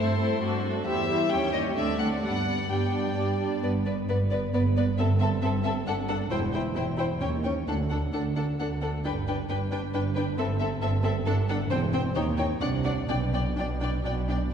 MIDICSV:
0, 0, Header, 1, 6, 480
1, 0, Start_track
1, 0, Key_signature, 1, "major"
1, 0, Tempo, 441176
1, 944, Time_signature, 3, 2, 24, 8
1, 1428, Tempo, 463320
1, 3828, Tempo, 446429
1, 7188, Tempo, 459067
1, 9588, Tempo, 443131
1, 12948, Tempo, 474308
1, 15360, End_track
2, 0, Start_track
2, 0, Title_t, "Violin section"
2, 0, Program_c, 0, 48
2, 0, Note_on_c, 0, 72, 53
2, 686, Note_off_c, 0, 72, 0
2, 944, Note_on_c, 0, 76, 67
2, 1394, Note_off_c, 0, 76, 0
2, 1422, Note_on_c, 0, 79, 67
2, 1657, Note_on_c, 0, 75, 52
2, 1659, Note_off_c, 0, 79, 0
2, 1740, Note_off_c, 0, 75, 0
2, 1900, Note_on_c, 0, 76, 56
2, 2132, Note_on_c, 0, 78, 54
2, 2133, Note_off_c, 0, 76, 0
2, 2214, Note_off_c, 0, 78, 0
2, 2378, Note_on_c, 0, 78, 57
2, 2853, Note_off_c, 0, 78, 0
2, 2864, Note_on_c, 0, 79, 44
2, 3587, Note_off_c, 0, 79, 0
2, 3827, Note_on_c, 0, 74, 40
2, 3913, Note_off_c, 0, 74, 0
2, 4075, Note_on_c, 0, 74, 35
2, 4161, Note_off_c, 0, 74, 0
2, 4319, Note_on_c, 0, 74, 40
2, 4405, Note_off_c, 0, 74, 0
2, 4558, Note_on_c, 0, 74, 41
2, 4644, Note_off_c, 0, 74, 0
2, 4804, Note_on_c, 0, 74, 46
2, 4890, Note_off_c, 0, 74, 0
2, 5046, Note_on_c, 0, 74, 46
2, 5132, Note_off_c, 0, 74, 0
2, 5280, Note_on_c, 0, 76, 53
2, 5366, Note_off_c, 0, 76, 0
2, 5514, Note_on_c, 0, 76, 49
2, 5600, Note_off_c, 0, 76, 0
2, 5749, Note_on_c, 0, 76, 49
2, 5835, Note_off_c, 0, 76, 0
2, 5992, Note_on_c, 0, 76, 53
2, 6078, Note_off_c, 0, 76, 0
2, 6232, Note_on_c, 0, 78, 56
2, 6318, Note_off_c, 0, 78, 0
2, 6464, Note_on_c, 0, 78, 50
2, 6550, Note_off_c, 0, 78, 0
2, 6708, Note_on_c, 0, 79, 55
2, 6794, Note_off_c, 0, 79, 0
2, 6947, Note_on_c, 0, 79, 44
2, 7033, Note_off_c, 0, 79, 0
2, 7191, Note_on_c, 0, 79, 44
2, 7275, Note_off_c, 0, 79, 0
2, 7417, Note_on_c, 0, 79, 44
2, 7501, Note_off_c, 0, 79, 0
2, 7662, Note_on_c, 0, 79, 39
2, 7746, Note_off_c, 0, 79, 0
2, 7904, Note_on_c, 0, 79, 37
2, 7987, Note_off_c, 0, 79, 0
2, 8150, Note_on_c, 0, 78, 37
2, 8234, Note_off_c, 0, 78, 0
2, 8386, Note_on_c, 0, 78, 33
2, 8470, Note_off_c, 0, 78, 0
2, 8630, Note_on_c, 0, 78, 34
2, 8713, Note_off_c, 0, 78, 0
2, 8863, Note_on_c, 0, 78, 35
2, 8947, Note_off_c, 0, 78, 0
2, 9111, Note_on_c, 0, 78, 34
2, 9195, Note_off_c, 0, 78, 0
2, 9351, Note_on_c, 0, 78, 32
2, 9435, Note_off_c, 0, 78, 0
2, 9585, Note_on_c, 0, 79, 49
2, 9671, Note_off_c, 0, 79, 0
2, 9831, Note_on_c, 0, 79, 44
2, 9917, Note_off_c, 0, 79, 0
2, 10069, Note_on_c, 0, 79, 44
2, 10156, Note_off_c, 0, 79, 0
2, 10311, Note_on_c, 0, 79, 46
2, 10398, Note_off_c, 0, 79, 0
2, 10550, Note_on_c, 0, 79, 50
2, 10637, Note_off_c, 0, 79, 0
2, 10787, Note_on_c, 0, 79, 46
2, 10874, Note_off_c, 0, 79, 0
2, 11029, Note_on_c, 0, 76, 52
2, 11115, Note_off_c, 0, 76, 0
2, 11262, Note_on_c, 0, 76, 49
2, 11348, Note_off_c, 0, 76, 0
2, 11507, Note_on_c, 0, 76, 53
2, 11594, Note_off_c, 0, 76, 0
2, 11750, Note_on_c, 0, 76, 53
2, 11837, Note_off_c, 0, 76, 0
2, 11989, Note_on_c, 0, 78, 54
2, 12075, Note_off_c, 0, 78, 0
2, 12227, Note_on_c, 0, 78, 53
2, 12314, Note_off_c, 0, 78, 0
2, 12474, Note_on_c, 0, 79, 56
2, 12561, Note_off_c, 0, 79, 0
2, 12710, Note_on_c, 0, 79, 52
2, 12797, Note_off_c, 0, 79, 0
2, 12951, Note_on_c, 0, 79, 50
2, 13032, Note_off_c, 0, 79, 0
2, 13177, Note_on_c, 0, 79, 51
2, 13258, Note_off_c, 0, 79, 0
2, 13412, Note_on_c, 0, 78, 52
2, 13493, Note_off_c, 0, 78, 0
2, 13646, Note_on_c, 0, 78, 43
2, 13727, Note_off_c, 0, 78, 0
2, 13896, Note_on_c, 0, 79, 50
2, 13977, Note_off_c, 0, 79, 0
2, 14146, Note_on_c, 0, 79, 42
2, 14227, Note_off_c, 0, 79, 0
2, 14381, Note_on_c, 0, 79, 40
2, 14462, Note_off_c, 0, 79, 0
2, 14628, Note_on_c, 0, 79, 45
2, 14709, Note_off_c, 0, 79, 0
2, 14873, Note_on_c, 0, 79, 47
2, 14954, Note_off_c, 0, 79, 0
2, 15108, Note_on_c, 0, 79, 39
2, 15189, Note_off_c, 0, 79, 0
2, 15360, End_track
3, 0, Start_track
3, 0, Title_t, "Violin section"
3, 0, Program_c, 1, 48
3, 0, Note_on_c, 1, 64, 42
3, 0, Note_on_c, 1, 69, 43
3, 217, Note_off_c, 1, 64, 0
3, 217, Note_off_c, 1, 69, 0
3, 231, Note_on_c, 1, 64, 45
3, 231, Note_on_c, 1, 69, 40
3, 455, Note_off_c, 1, 69, 0
3, 461, Note_off_c, 1, 64, 0
3, 468, Note_on_c, 1, 69, 46
3, 469, Note_on_c, 1, 66, 44
3, 701, Note_off_c, 1, 69, 0
3, 702, Note_off_c, 1, 66, 0
3, 716, Note_on_c, 1, 66, 45
3, 719, Note_on_c, 1, 69, 43
3, 946, Note_off_c, 1, 66, 0
3, 947, Note_off_c, 1, 69, 0
3, 948, Note_on_c, 1, 72, 46
3, 950, Note_on_c, 1, 67, 46
3, 1174, Note_off_c, 1, 72, 0
3, 1177, Note_off_c, 1, 67, 0
3, 1187, Note_on_c, 1, 72, 39
3, 1190, Note_on_c, 1, 67, 40
3, 1420, Note_off_c, 1, 67, 0
3, 1424, Note_off_c, 1, 72, 0
3, 1431, Note_on_c, 1, 73, 43
3, 1433, Note_on_c, 1, 67, 41
3, 1659, Note_off_c, 1, 73, 0
3, 1660, Note_off_c, 1, 67, 0
3, 1672, Note_on_c, 1, 73, 44
3, 1675, Note_on_c, 1, 67, 41
3, 1898, Note_off_c, 1, 73, 0
3, 1899, Note_off_c, 1, 67, 0
3, 1909, Note_on_c, 1, 62, 41
3, 1910, Note_on_c, 1, 74, 39
3, 2132, Note_off_c, 1, 62, 0
3, 2132, Note_off_c, 1, 74, 0
3, 2144, Note_on_c, 1, 62, 40
3, 2144, Note_on_c, 1, 74, 37
3, 2374, Note_off_c, 1, 62, 0
3, 2375, Note_off_c, 1, 74, 0
3, 2386, Note_on_c, 1, 62, 36
3, 2387, Note_on_c, 1, 74, 35
3, 2620, Note_off_c, 1, 62, 0
3, 2620, Note_off_c, 1, 74, 0
3, 2633, Note_on_c, 1, 62, 32
3, 2634, Note_on_c, 1, 74, 32
3, 2857, Note_off_c, 1, 62, 0
3, 2857, Note_off_c, 1, 74, 0
3, 2870, Note_on_c, 1, 62, 32
3, 2870, Note_on_c, 1, 74, 32
3, 3095, Note_off_c, 1, 74, 0
3, 3097, Note_off_c, 1, 62, 0
3, 3108, Note_on_c, 1, 74, 34
3, 3110, Note_on_c, 1, 62, 32
3, 3338, Note_off_c, 1, 62, 0
3, 3342, Note_off_c, 1, 74, 0
3, 3351, Note_on_c, 1, 62, 32
3, 3352, Note_on_c, 1, 74, 33
3, 3573, Note_off_c, 1, 74, 0
3, 3574, Note_off_c, 1, 62, 0
3, 3585, Note_on_c, 1, 74, 33
3, 3587, Note_on_c, 1, 62, 31
3, 3821, Note_off_c, 1, 74, 0
3, 3822, Note_off_c, 1, 62, 0
3, 3828, Note_on_c, 1, 71, 40
3, 3914, Note_off_c, 1, 71, 0
3, 4074, Note_on_c, 1, 71, 36
3, 4160, Note_off_c, 1, 71, 0
3, 4319, Note_on_c, 1, 71, 41
3, 4405, Note_off_c, 1, 71, 0
3, 4560, Note_on_c, 1, 71, 42
3, 4646, Note_off_c, 1, 71, 0
3, 4817, Note_on_c, 1, 71, 43
3, 4903, Note_off_c, 1, 71, 0
3, 5059, Note_on_c, 1, 71, 47
3, 5145, Note_off_c, 1, 71, 0
3, 5299, Note_on_c, 1, 69, 49
3, 5385, Note_off_c, 1, 69, 0
3, 5534, Note_on_c, 1, 69, 49
3, 5620, Note_off_c, 1, 69, 0
3, 5774, Note_on_c, 1, 69, 52
3, 5860, Note_off_c, 1, 69, 0
3, 6008, Note_on_c, 1, 69, 55
3, 6094, Note_off_c, 1, 69, 0
3, 6244, Note_on_c, 1, 69, 56
3, 6330, Note_off_c, 1, 69, 0
3, 6471, Note_on_c, 1, 69, 52
3, 6557, Note_off_c, 1, 69, 0
3, 6718, Note_on_c, 1, 72, 55
3, 6804, Note_off_c, 1, 72, 0
3, 6963, Note_on_c, 1, 72, 46
3, 7049, Note_off_c, 1, 72, 0
3, 7198, Note_on_c, 1, 72, 46
3, 7282, Note_off_c, 1, 72, 0
3, 7432, Note_on_c, 1, 72, 46
3, 7516, Note_off_c, 1, 72, 0
3, 7668, Note_on_c, 1, 73, 43
3, 7752, Note_off_c, 1, 73, 0
3, 7911, Note_on_c, 1, 73, 37
3, 7995, Note_off_c, 1, 73, 0
3, 8158, Note_on_c, 1, 69, 35
3, 8242, Note_off_c, 1, 69, 0
3, 8398, Note_on_c, 1, 69, 32
3, 8482, Note_off_c, 1, 69, 0
3, 8641, Note_on_c, 1, 69, 34
3, 8724, Note_off_c, 1, 69, 0
3, 8878, Note_on_c, 1, 69, 33
3, 8962, Note_off_c, 1, 69, 0
3, 9113, Note_on_c, 1, 69, 34
3, 9197, Note_off_c, 1, 69, 0
3, 9352, Note_on_c, 1, 69, 35
3, 9435, Note_off_c, 1, 69, 0
3, 9590, Note_on_c, 1, 71, 44
3, 9677, Note_off_c, 1, 71, 0
3, 9836, Note_on_c, 1, 71, 43
3, 9922, Note_off_c, 1, 71, 0
3, 10071, Note_on_c, 1, 71, 48
3, 10157, Note_off_c, 1, 71, 0
3, 10310, Note_on_c, 1, 71, 48
3, 10396, Note_off_c, 1, 71, 0
3, 10546, Note_on_c, 1, 71, 47
3, 10633, Note_off_c, 1, 71, 0
3, 10784, Note_on_c, 1, 71, 50
3, 10871, Note_off_c, 1, 71, 0
3, 11038, Note_on_c, 1, 69, 53
3, 11124, Note_off_c, 1, 69, 0
3, 11282, Note_on_c, 1, 69, 50
3, 11369, Note_off_c, 1, 69, 0
3, 11507, Note_on_c, 1, 69, 51
3, 11593, Note_off_c, 1, 69, 0
3, 11743, Note_on_c, 1, 69, 54
3, 11830, Note_off_c, 1, 69, 0
3, 11983, Note_on_c, 1, 69, 57
3, 12070, Note_off_c, 1, 69, 0
3, 12225, Note_on_c, 1, 69, 60
3, 12311, Note_off_c, 1, 69, 0
3, 12459, Note_on_c, 1, 72, 57
3, 12546, Note_off_c, 1, 72, 0
3, 12705, Note_on_c, 1, 72, 50
3, 12792, Note_off_c, 1, 72, 0
3, 12952, Note_on_c, 1, 73, 57
3, 13033, Note_off_c, 1, 73, 0
3, 13170, Note_on_c, 1, 73, 55
3, 13251, Note_off_c, 1, 73, 0
3, 13403, Note_on_c, 1, 74, 50
3, 13484, Note_off_c, 1, 74, 0
3, 13652, Note_on_c, 1, 74, 49
3, 13733, Note_off_c, 1, 74, 0
3, 13902, Note_on_c, 1, 74, 47
3, 13983, Note_off_c, 1, 74, 0
3, 14149, Note_on_c, 1, 74, 44
3, 14230, Note_off_c, 1, 74, 0
3, 14400, Note_on_c, 1, 74, 43
3, 14481, Note_off_c, 1, 74, 0
3, 14643, Note_on_c, 1, 74, 44
3, 14724, Note_off_c, 1, 74, 0
3, 14877, Note_on_c, 1, 74, 46
3, 14958, Note_off_c, 1, 74, 0
3, 15122, Note_on_c, 1, 74, 47
3, 15202, Note_off_c, 1, 74, 0
3, 15360, End_track
4, 0, Start_track
4, 0, Title_t, "Viola section"
4, 0, Program_c, 2, 48
4, 0, Note_on_c, 2, 57, 41
4, 0, Note_on_c, 2, 60, 42
4, 218, Note_off_c, 2, 57, 0
4, 219, Note_off_c, 2, 60, 0
4, 231, Note_on_c, 2, 57, 42
4, 232, Note_on_c, 2, 60, 42
4, 455, Note_off_c, 2, 57, 0
4, 461, Note_off_c, 2, 60, 0
4, 468, Note_on_c, 2, 57, 45
4, 468, Note_on_c, 2, 62, 45
4, 696, Note_off_c, 2, 62, 0
4, 697, Note_off_c, 2, 57, 0
4, 709, Note_on_c, 2, 62, 39
4, 710, Note_on_c, 2, 57, 40
4, 942, Note_off_c, 2, 62, 0
4, 943, Note_off_c, 2, 57, 0
4, 951, Note_on_c, 2, 64, 44
4, 952, Note_on_c, 2, 55, 45
4, 1180, Note_off_c, 2, 64, 0
4, 1184, Note_off_c, 2, 55, 0
4, 1194, Note_on_c, 2, 64, 42
4, 1196, Note_on_c, 2, 55, 40
4, 1423, Note_off_c, 2, 55, 0
4, 1427, Note_off_c, 2, 64, 0
4, 1435, Note_on_c, 2, 55, 45
4, 1435, Note_on_c, 2, 61, 41
4, 1657, Note_off_c, 2, 61, 0
4, 1661, Note_off_c, 2, 55, 0
4, 1670, Note_on_c, 2, 61, 39
4, 1672, Note_on_c, 2, 55, 40
4, 1897, Note_off_c, 2, 61, 0
4, 1898, Note_off_c, 2, 55, 0
4, 1908, Note_on_c, 2, 60, 44
4, 1909, Note_on_c, 2, 57, 39
4, 2134, Note_off_c, 2, 60, 0
4, 2137, Note_off_c, 2, 57, 0
4, 2146, Note_on_c, 2, 60, 34
4, 2148, Note_on_c, 2, 57, 33
4, 2378, Note_off_c, 2, 60, 0
4, 2379, Note_off_c, 2, 57, 0
4, 2387, Note_on_c, 2, 55, 34
4, 2388, Note_on_c, 2, 59, 36
4, 2621, Note_off_c, 2, 55, 0
4, 2621, Note_off_c, 2, 59, 0
4, 2631, Note_on_c, 2, 55, 31
4, 2632, Note_on_c, 2, 59, 30
4, 2853, Note_off_c, 2, 55, 0
4, 2854, Note_off_c, 2, 59, 0
4, 2865, Note_on_c, 2, 55, 33
4, 2866, Note_on_c, 2, 59, 33
4, 3093, Note_off_c, 2, 59, 0
4, 3095, Note_off_c, 2, 55, 0
4, 3105, Note_on_c, 2, 59, 31
4, 3108, Note_on_c, 2, 55, 31
4, 3337, Note_off_c, 2, 55, 0
4, 3338, Note_off_c, 2, 59, 0
4, 3350, Note_on_c, 2, 55, 32
4, 3351, Note_on_c, 2, 59, 34
4, 3576, Note_off_c, 2, 59, 0
4, 3578, Note_off_c, 2, 55, 0
4, 3588, Note_on_c, 2, 59, 31
4, 3590, Note_on_c, 2, 55, 30
4, 3823, Note_off_c, 2, 59, 0
4, 3824, Note_off_c, 2, 55, 0
4, 3834, Note_on_c, 2, 59, 38
4, 3920, Note_off_c, 2, 59, 0
4, 4077, Note_on_c, 2, 59, 36
4, 4163, Note_off_c, 2, 59, 0
4, 4324, Note_on_c, 2, 59, 41
4, 4410, Note_off_c, 2, 59, 0
4, 4566, Note_on_c, 2, 59, 39
4, 4652, Note_off_c, 2, 59, 0
4, 4810, Note_on_c, 2, 59, 47
4, 4896, Note_off_c, 2, 59, 0
4, 5052, Note_on_c, 2, 59, 46
4, 5138, Note_off_c, 2, 59, 0
4, 5285, Note_on_c, 2, 60, 50
4, 5371, Note_off_c, 2, 60, 0
4, 5524, Note_on_c, 2, 60, 49
4, 5610, Note_off_c, 2, 60, 0
4, 5759, Note_on_c, 2, 60, 55
4, 5845, Note_off_c, 2, 60, 0
4, 5997, Note_on_c, 2, 60, 48
4, 6083, Note_off_c, 2, 60, 0
4, 6232, Note_on_c, 2, 62, 56
4, 6318, Note_off_c, 2, 62, 0
4, 6472, Note_on_c, 2, 62, 46
4, 6558, Note_off_c, 2, 62, 0
4, 6710, Note_on_c, 2, 64, 54
4, 6796, Note_off_c, 2, 64, 0
4, 6950, Note_on_c, 2, 64, 46
4, 7036, Note_off_c, 2, 64, 0
4, 7187, Note_on_c, 2, 64, 44
4, 7270, Note_off_c, 2, 64, 0
4, 7419, Note_on_c, 2, 64, 43
4, 7503, Note_off_c, 2, 64, 0
4, 7662, Note_on_c, 2, 61, 41
4, 7746, Note_off_c, 2, 61, 0
4, 7910, Note_on_c, 2, 61, 36
4, 7994, Note_off_c, 2, 61, 0
4, 8151, Note_on_c, 2, 62, 36
4, 8235, Note_off_c, 2, 62, 0
4, 8393, Note_on_c, 2, 62, 34
4, 8477, Note_off_c, 2, 62, 0
4, 8631, Note_on_c, 2, 62, 36
4, 8715, Note_off_c, 2, 62, 0
4, 8872, Note_on_c, 2, 62, 32
4, 8956, Note_off_c, 2, 62, 0
4, 9116, Note_on_c, 2, 62, 36
4, 9199, Note_off_c, 2, 62, 0
4, 9355, Note_on_c, 2, 62, 33
4, 9439, Note_off_c, 2, 62, 0
4, 9591, Note_on_c, 2, 62, 46
4, 9678, Note_off_c, 2, 62, 0
4, 9836, Note_on_c, 2, 62, 43
4, 9922, Note_off_c, 2, 62, 0
4, 10074, Note_on_c, 2, 62, 43
4, 10161, Note_off_c, 2, 62, 0
4, 10317, Note_on_c, 2, 62, 44
4, 10403, Note_off_c, 2, 62, 0
4, 10558, Note_on_c, 2, 62, 48
4, 10644, Note_off_c, 2, 62, 0
4, 10800, Note_on_c, 2, 62, 44
4, 10886, Note_off_c, 2, 62, 0
4, 11037, Note_on_c, 2, 60, 54
4, 11123, Note_off_c, 2, 60, 0
4, 11276, Note_on_c, 2, 60, 47
4, 11363, Note_off_c, 2, 60, 0
4, 11518, Note_on_c, 2, 60, 52
4, 11604, Note_off_c, 2, 60, 0
4, 11755, Note_on_c, 2, 60, 55
4, 11842, Note_off_c, 2, 60, 0
4, 11995, Note_on_c, 2, 62, 60
4, 12081, Note_off_c, 2, 62, 0
4, 12236, Note_on_c, 2, 62, 49
4, 12323, Note_off_c, 2, 62, 0
4, 12474, Note_on_c, 2, 60, 59
4, 12561, Note_off_c, 2, 60, 0
4, 12713, Note_on_c, 2, 60, 50
4, 12800, Note_off_c, 2, 60, 0
4, 12950, Note_on_c, 2, 63, 54
4, 13031, Note_off_c, 2, 63, 0
4, 13178, Note_on_c, 2, 63, 50
4, 13259, Note_off_c, 2, 63, 0
4, 13414, Note_on_c, 2, 62, 53
4, 13495, Note_off_c, 2, 62, 0
4, 13653, Note_on_c, 2, 62, 46
4, 13734, Note_off_c, 2, 62, 0
4, 13895, Note_on_c, 2, 62, 47
4, 13976, Note_off_c, 2, 62, 0
4, 14146, Note_on_c, 2, 62, 39
4, 14227, Note_off_c, 2, 62, 0
4, 14388, Note_on_c, 2, 62, 44
4, 14469, Note_off_c, 2, 62, 0
4, 14630, Note_on_c, 2, 62, 43
4, 14711, Note_off_c, 2, 62, 0
4, 14867, Note_on_c, 2, 62, 47
4, 14948, Note_off_c, 2, 62, 0
4, 15109, Note_on_c, 2, 62, 39
4, 15190, Note_off_c, 2, 62, 0
4, 15360, End_track
5, 0, Start_track
5, 0, Title_t, "Cello section"
5, 0, Program_c, 3, 48
5, 0, Note_on_c, 3, 43, 47
5, 405, Note_off_c, 3, 43, 0
5, 461, Note_on_c, 3, 43, 51
5, 887, Note_off_c, 3, 43, 0
5, 944, Note_on_c, 3, 40, 53
5, 1370, Note_off_c, 3, 40, 0
5, 1427, Note_on_c, 3, 39, 49
5, 1841, Note_off_c, 3, 39, 0
5, 1896, Note_on_c, 3, 38, 45
5, 2320, Note_off_c, 3, 38, 0
5, 2380, Note_on_c, 3, 43, 43
5, 2806, Note_off_c, 3, 43, 0
5, 2866, Note_on_c, 3, 43, 35
5, 3291, Note_off_c, 3, 43, 0
5, 3351, Note_on_c, 3, 43, 36
5, 3774, Note_off_c, 3, 43, 0
5, 3824, Note_on_c, 3, 43, 46
5, 4257, Note_off_c, 3, 43, 0
5, 4311, Note_on_c, 3, 43, 47
5, 4742, Note_off_c, 3, 43, 0
5, 4803, Note_on_c, 3, 43, 54
5, 5227, Note_off_c, 3, 43, 0
5, 5278, Note_on_c, 3, 43, 60
5, 5698, Note_off_c, 3, 43, 0
5, 5755, Note_on_c, 3, 43, 60
5, 6171, Note_off_c, 3, 43, 0
5, 6231, Note_on_c, 3, 43, 65
5, 6650, Note_off_c, 3, 43, 0
5, 6708, Note_on_c, 3, 40, 64
5, 7132, Note_off_c, 3, 40, 0
5, 7188, Note_on_c, 3, 40, 55
5, 7607, Note_off_c, 3, 40, 0
5, 7665, Note_on_c, 3, 39, 50
5, 8092, Note_off_c, 3, 39, 0
5, 8147, Note_on_c, 3, 38, 44
5, 8574, Note_off_c, 3, 38, 0
5, 8634, Note_on_c, 3, 38, 39
5, 9056, Note_off_c, 3, 38, 0
5, 9106, Note_on_c, 3, 38, 42
5, 9530, Note_off_c, 3, 38, 0
5, 9585, Note_on_c, 3, 43, 56
5, 10014, Note_off_c, 3, 43, 0
5, 10073, Note_on_c, 3, 43, 50
5, 10496, Note_off_c, 3, 43, 0
5, 10550, Note_on_c, 3, 43, 59
5, 10974, Note_off_c, 3, 43, 0
5, 11031, Note_on_c, 3, 43, 64
5, 11453, Note_off_c, 3, 43, 0
5, 11505, Note_on_c, 3, 43, 64
5, 11929, Note_off_c, 3, 43, 0
5, 11984, Note_on_c, 3, 43, 63
5, 12408, Note_off_c, 3, 43, 0
5, 12465, Note_on_c, 3, 40, 65
5, 12890, Note_off_c, 3, 40, 0
5, 12947, Note_on_c, 3, 39, 61
5, 13354, Note_off_c, 3, 39, 0
5, 13405, Note_on_c, 3, 48, 60
5, 13834, Note_off_c, 3, 48, 0
5, 13894, Note_on_c, 3, 47, 55
5, 14329, Note_off_c, 3, 47, 0
5, 14388, Note_on_c, 3, 47, 50
5, 14815, Note_off_c, 3, 47, 0
5, 14866, Note_on_c, 3, 47, 54
5, 15291, Note_off_c, 3, 47, 0
5, 15360, End_track
6, 0, Start_track
6, 0, Title_t, "Double bass section"
6, 0, Program_c, 4, 48
6, 3832, Note_on_c, 4, 31, 47
6, 4261, Note_off_c, 4, 31, 0
6, 4316, Note_on_c, 4, 31, 49
6, 4745, Note_off_c, 4, 31, 0
6, 4807, Note_on_c, 4, 31, 59
6, 5229, Note_off_c, 4, 31, 0
6, 5287, Note_on_c, 4, 31, 64
6, 5703, Note_off_c, 4, 31, 0
6, 5756, Note_on_c, 4, 31, 64
6, 6172, Note_off_c, 4, 31, 0
6, 6227, Note_on_c, 4, 31, 68
6, 6648, Note_off_c, 4, 31, 0
6, 6708, Note_on_c, 4, 28, 68
6, 7132, Note_off_c, 4, 28, 0
6, 7193, Note_on_c, 4, 28, 54
6, 7609, Note_off_c, 4, 28, 0
6, 7662, Note_on_c, 4, 39, 53
6, 8090, Note_off_c, 4, 39, 0
6, 8146, Note_on_c, 4, 38, 48
6, 8574, Note_off_c, 4, 38, 0
6, 8634, Note_on_c, 4, 38, 43
6, 9056, Note_off_c, 4, 38, 0
6, 9113, Note_on_c, 4, 38, 42
6, 9534, Note_off_c, 4, 38, 0
6, 9589, Note_on_c, 4, 31, 56
6, 10016, Note_off_c, 4, 31, 0
6, 10075, Note_on_c, 4, 31, 51
6, 10498, Note_off_c, 4, 31, 0
6, 10556, Note_on_c, 4, 31, 59
6, 10977, Note_off_c, 4, 31, 0
6, 11029, Note_on_c, 4, 31, 65
6, 11451, Note_off_c, 4, 31, 0
6, 11510, Note_on_c, 4, 31, 67
6, 11932, Note_off_c, 4, 31, 0
6, 11992, Note_on_c, 4, 31, 70
6, 12412, Note_off_c, 4, 31, 0
6, 12467, Note_on_c, 4, 28, 74
6, 12891, Note_off_c, 4, 28, 0
6, 12949, Note_on_c, 4, 39, 60
6, 13355, Note_off_c, 4, 39, 0
6, 13413, Note_on_c, 4, 36, 63
6, 13837, Note_off_c, 4, 36, 0
6, 13897, Note_on_c, 4, 35, 57
6, 14330, Note_off_c, 4, 35, 0
6, 14389, Note_on_c, 4, 35, 52
6, 14815, Note_off_c, 4, 35, 0
6, 14872, Note_on_c, 4, 35, 59
6, 15294, Note_off_c, 4, 35, 0
6, 15360, End_track
0, 0, End_of_file